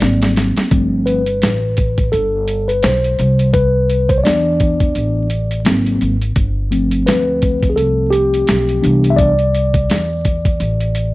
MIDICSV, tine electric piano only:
0, 0, Header, 1, 2, 480
1, 0, Start_track
1, 0, Key_signature, 0, "major"
1, 0, Tempo, 705882
1, 486, Time_signature, 4, 2, 24, 8
1, 7577, End_track
2, 0, Start_track
2, 0, Title_t, "Tine electric piano"
2, 0, Program_c, 0, 4
2, 0, Note_on_c, 0, 74, 106
2, 3, Note_on_c, 0, 54, 55
2, 5, Note_on_c, 0, 58, 47
2, 9, Note_on_c, 0, 60, 58
2, 213, Note_off_c, 0, 74, 0
2, 460, Note_off_c, 0, 54, 0
2, 462, Note_off_c, 0, 58, 0
2, 464, Note_off_c, 0, 60, 0
2, 482, Note_on_c, 0, 53, 51
2, 488, Note_on_c, 0, 57, 49
2, 492, Note_on_c, 0, 60, 58
2, 719, Note_on_c, 0, 71, 76
2, 818, Note_off_c, 0, 53, 0
2, 821, Note_off_c, 0, 57, 0
2, 823, Note_off_c, 0, 60, 0
2, 1415, Note_off_c, 0, 71, 0
2, 1441, Note_on_c, 0, 69, 89
2, 1822, Note_on_c, 0, 71, 79
2, 1835, Note_off_c, 0, 69, 0
2, 1925, Note_on_c, 0, 72, 89
2, 1927, Note_off_c, 0, 71, 0
2, 2378, Note_off_c, 0, 72, 0
2, 2404, Note_on_c, 0, 71, 97
2, 2782, Note_on_c, 0, 72, 87
2, 2796, Note_off_c, 0, 71, 0
2, 2841, Note_on_c, 0, 73, 62
2, 2846, Note_off_c, 0, 72, 0
2, 2881, Note_on_c, 0, 74, 85
2, 2883, Note_off_c, 0, 73, 0
2, 2883, Note_on_c, 0, 52, 49
2, 2887, Note_on_c, 0, 59, 48
2, 2893, Note_on_c, 0, 62, 58
2, 3577, Note_off_c, 0, 52, 0
2, 3579, Note_off_c, 0, 59, 0
2, 3582, Note_off_c, 0, 62, 0
2, 3816, Note_off_c, 0, 74, 0
2, 3840, Note_on_c, 0, 54, 55
2, 3845, Note_on_c, 0, 58, 52
2, 3850, Note_on_c, 0, 60, 60
2, 4177, Note_off_c, 0, 54, 0
2, 4180, Note_off_c, 0, 58, 0
2, 4182, Note_off_c, 0, 60, 0
2, 4562, Note_on_c, 0, 53, 52
2, 4565, Note_on_c, 0, 57, 45
2, 4568, Note_on_c, 0, 60, 61
2, 4804, Note_on_c, 0, 71, 83
2, 5218, Note_off_c, 0, 71, 0
2, 5232, Note_on_c, 0, 68, 61
2, 5277, Note_on_c, 0, 69, 92
2, 5279, Note_off_c, 0, 68, 0
2, 5511, Note_on_c, 0, 67, 94
2, 5529, Note_off_c, 0, 69, 0
2, 5977, Note_off_c, 0, 53, 0
2, 5978, Note_off_c, 0, 57, 0
2, 5980, Note_off_c, 0, 60, 0
2, 5995, Note_on_c, 0, 52, 60
2, 5999, Note_on_c, 0, 59, 53
2, 6002, Note_on_c, 0, 62, 62
2, 6190, Note_on_c, 0, 76, 78
2, 6219, Note_off_c, 0, 67, 0
2, 6232, Note_on_c, 0, 74, 106
2, 6238, Note_off_c, 0, 76, 0
2, 6334, Note_off_c, 0, 52, 0
2, 6337, Note_off_c, 0, 59, 0
2, 6338, Note_off_c, 0, 62, 0
2, 7577, Note_off_c, 0, 74, 0
2, 7577, End_track
0, 0, End_of_file